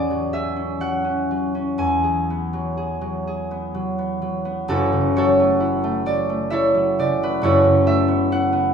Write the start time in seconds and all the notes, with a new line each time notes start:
Already playing: E2 C#4 G#4 B4 C#5 D5 B5
0.11 F#3
0.33 G#4 E5
0.56 C#4
0.80 F#3 F#5
1.04 C#4
1.31 F#3
1.55 C#4
1.78 E2 G#5
2.03 G#4
2.30 B3
2.53 F#3
2.77 G#4
3.01 F#3
3.27 G#4
3.51 B3
3.75 F#3
3.99 B3
4.22 F#3
4.45 B3
4.68 F#1 F#2 E4 F#4 A4
4.92 C#3
5.16 F#3 F#4 A4 C#5
5.40 A3
5.60 E4
5.84 A3
6.06 F#3 D5
6.29 A3
6.50 E4 A4 C#5 E5
6.75 F#3
6.99 C#3 D5
7.23 F#3 B4
7.42 F#1 F#2 E4 A4 C#5
7.64 C#3
7.87 A3 E5
8.08 B3
8.32 E4 F#5
8.53 B3